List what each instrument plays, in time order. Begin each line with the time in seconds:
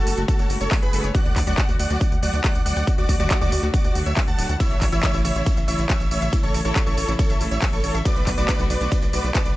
Already playing: string section C#3 G#3 A3 F#4, supersaw synth F#4 A4 A5
0.07 analog synth bass F#1, synth pluck A4, open hi-hat, tambourine
0.17 analog synth bass F#1, string section C#3 G#3 A3 F#4, synth pluck F#4, closed hi-hat, tambourine
0.28 supersaw synth F#4 A4 A5, kick, closed hi-hat, tambourine
0.39 analog synth bass F#1, synth pluck C#5, closed hi-hat, tambourine
0.50 analog synth bass F#1, string section C#3 G#3 A3 F#4, synth pluck F#4, open hi-hat, tambourine
0.61 analog synth bass F#1, supersaw synth A4 C#5 C#6, closed hi-hat, tambourine
0.71 string section C#3 G#3 A3 F#4, synth pluck G#5, kick, clap, open hi-hat, tambourine
0.82 analog synth bass F#1, supersaw synth G#4 B4 B5, closed hi-hat, tambourine
0.93 analog synth bass F#1, string section C#3 G#3 A3 F#4, synth pluck A4, open hi-hat, tambourine
1.04 analog synth bass F#1, synth pluck C#5, closed hi-hat, tambourine
1.14 string section D3 F#3 A3 F#4, synth pluck F#4, supersaw synth D5 F#5 F#6, kick, closed hi-hat, tambourine
1.25 analog synth bass D2, synth pluck D5, closed hi-hat
1.36 analog synth bass D2, synth pluck D5, kick, clap, open hi-hat, tambourine
1.47 analog synth bass D2, string section D3 F#3 A3 F#4, synth pluck F#4, supersaw synth D5 F#5 F#6, closed hi-hat, tambourine
1.58 synth pluck F#5, kick, clap, closed hi-hat, tambourine
1.69 analog synth bass D2, string section D3 F#3 A3 F#4, synth pluck F#4, tambourine
1.79 analog synth bass D2, synth pluck D5, supersaw synth D5 F#5 F#6, open hi-hat, tambourine
1.90 analog synth bass D2, string section D3 F#3 A3 F#4, synth pluck F#4, closed hi-hat, tambourine
2.01 kick, closed hi-hat, tambourine
2.12 analog synth bass D2, synth pluck F#5, closed hi-hat, tambourine
2.22 analog synth bass D2, string section D3 F#3 A3 F#4, synth pluck F#4, supersaw synth D5 F#5 F#6, open hi-hat, tambourine
2.33 analog synth bass D2, closed hi-hat, tambourine
2.44 string section D3 F#3 A3 F#4, supersaw synth D5 F#5 F#6, synth pluck D6, kick, clap, closed hi-hat, tambourine
2.55 analog synth bass D2, closed hi-hat, tambourine
2.66 analog synth bass D2, string section D3 F#3 A3 F#4, synth pluck D5, supersaw synth D5 F#5 F#6, open hi-hat, tambourine
2.77 analog synth bass D2, synth pluck F#5, closed hi-hat, tambourine
2.87 string section D3 F#3 A3 F#4, synth pluck F#4, kick, closed hi-hat, tambourine
2.98 analog synth bass D2, supersaw synth F#4 D5 D6, synth pluck D5, closed hi-hat
3.09 analog synth bass D2, synth pluck D5, kick, open hi-hat, tambourine
3.20 analog synth bass D2, string section D3 F#3 A3 F#4, synth pluck F#4, supersaw synth F#4 D5 D6, closed hi-hat, tambourine
3.30 synth pluck F#5, kick, clap, closed hi-hat, tambourine
3.41 analog synth bass D2, string section D3 F#3 A3 F#4, synth pluck F#4, supersaw synth F#4 D5 D6, tambourine
3.52 analog synth bass D2, synth pluck D5, open hi-hat, tambourine
3.63 analog synth bass D2, string section D3 F#3 A3 F#4, synth pluck F#4, closed hi-hat, tambourine
3.74 supersaw synth F#4 D5 D6, kick, closed hi-hat, tambourine
3.85 analog synth bass D2, synth pluck F#5, closed hi-hat, tambourine
3.95 analog synth bass D2, string section D3 F#3 A3 F#4, synth pluck F#4, open hi-hat, tambourine
4.06 analog synth bass D2, supersaw synth C#5 E5 E6, closed hi-hat, tambourine
4.17 string section D3 F#3 A3 F#4, synth pluck D6, kick, clap, open hi-hat, tambourine
4.28 analog synth bass D2, supersaw synth F#5 A5 A6, closed hi-hat, tambourine
4.38 analog synth bass D1, string section D3 F#3 A3 F#4, synth pluck D5, open hi-hat, tambourine
4.49 analog synth bass D2, synth pluck F#5, closed hi-hat, tambourine
4.60 string section C#3 E3 A3 E4, synth pluck E4, supersaw synth C#5 E5 E6, kick, closed hi-hat, ride, tambourine
4.71 analog synth bass A1, synth pluck C#5, closed hi-hat
4.82 analog synth bass A1, synth pluck C#5, kick, clap, open hi-hat, tambourine
4.92 analog synth bass A1, string section C#3 E3 A3 E4, synth pluck E4, supersaw synth C#5 E5 E6, closed hi-hat, tambourine
5.03 synth pluck E5, kick, clap, closed hi-hat, ride, tambourine
5.14 analog synth bass A1, string section C#3 E3 A3 E4, synth pluck E4, tambourine
5.25 analog synth bass A1, supersaw synth C#5 E5 E6, synth pluck C#5, open hi-hat, tambourine
5.36 analog synth bass A1, string section C#3 E3 A3 E4, synth pluck E4, closed hi-hat, tambourine
5.46 kick, closed hi-hat, ride, tambourine
5.57 analog synth bass A1, synth pluck E5, closed hi-hat, tambourine
5.68 analog synth bass A1, string section C#3 E3 A3 E4, synth pluck E4, supersaw synth C#5 E5 E6, open hi-hat, tambourine
5.79 analog synth bass A1, closed hi-hat, tambourine
5.89 string section C#3 E3 A3 E4, supersaw synth C#5 E5 E6, synth pluck C#6, kick, clap, closed hi-hat, ride, tambourine
6.00 analog synth bass A1, closed hi-hat, tambourine
6.11 analog synth bass A1, string section C#3 E3 A3 E4, supersaw synth C#5 E5 E6, synth pluck C#5, open hi-hat, tambourine
6.22 analog synth bass A1, synth pluck E5, closed hi-hat, tambourine
6.33 string section C#3 E3 A3 E4, synth pluck E4, kick, closed hi-hat, ride, tambourine
6.43 analog synth bass A1, supersaw synth A4 C#5 C#6, synth pluck C#5, closed hi-hat
6.54 analog synth bass A1, synth pluck C#5, open hi-hat, tambourine
6.65 analog synth bass A1, string section C#3 E3 A3 E4, synth pluck E4, supersaw synth A4 C#5 C#6, closed hi-hat, tambourine
6.76 synth pluck E5, kick, clap, closed hi-hat, ride, tambourine
6.86 analog synth bass A1, string section C#3 E3 A3 E4, synth pluck E4, supersaw synth A4 C#5 C#6, tambourine
6.97 analog synth bass A1, synth pluck C#5, open hi-hat, tambourine
7.08 analog synth bass A1, string section C#3 E3 A3 E4, synth pluck E4, closed hi-hat, tambourine
7.19 supersaw synth A4 C#5 C#6, kick, closed hi-hat, ride, tambourine
7.30 analog synth bass A1, synth pluck E5, closed hi-hat, tambourine
7.40 analog synth bass A1, string section C#3 E3 A3 E4, synth pluck E4, open hi-hat, tambourine
7.51 analog synth bass A1, supersaw synth C#5 E5 E6, closed hi-hat, tambourine
7.62 string section C#3 E3 A3 E4, synth pluck C#6, kick, clap, open hi-hat, ride, tambourine
7.73 analog synth bass A1, supersaw synth A4 C#5 C#6, closed hi-hat, tambourine
7.84 analog synth bass A1, string section C#3 E3 A3 E4, synth pluck C#5, open hi-hat, tambourine
7.95 analog synth bass A1, synth pluck E5, closed hi-hat, tambourine
8.05 string section D3 A3 B3 F#4, synth pluck F#4, supersaw synth B4 D5 D6, kick, closed hi-hat, ride, tambourine
8.16 analog synth bass B1, synth pluck B4, closed hi-hat
8.27 analog synth bass B1, synth pluck B4, kick, clap, open hi-hat, tambourine
8.37 analog synth bass B1, string section D3 A3 B3 F#4, synth pluck F#4, supersaw synth B4 D5 D6, closed hi-hat, tambourine
8.49 synth pluck D5, kick, clap, closed hi-hat, ride, tambourine
8.59 analog synth bass B1, string section D3 A3 B3 F#4, synth pluck F#4, tambourine
8.70 analog synth bass B1, synth pluck B4, supersaw synth B4 D5 D6, open hi-hat, tambourine
8.81 analog synth bass B1, string section D3 A3 B3 F#4, synth pluck F#4, closed hi-hat, tambourine
8.92 kick, closed hi-hat, ride, tambourine
9.02 analog synth bass B1, synth pluck D5, closed hi-hat, tambourine
9.13 analog synth bass B1, string section D3 A3 B3 F#4, synth pluck F#4, supersaw synth B4 D5 D6, open hi-hat, tambourine
9.24 analog synth bass B1, closed hi-hat, tambourine
9.35 string section D3 A3 B3 F#4, supersaw synth B4 D5 D6, synth pluck A5, kick, clap, closed hi-hat, ride, tambourine
9.46 analog synth bass B1, closed hi-hat, tambourine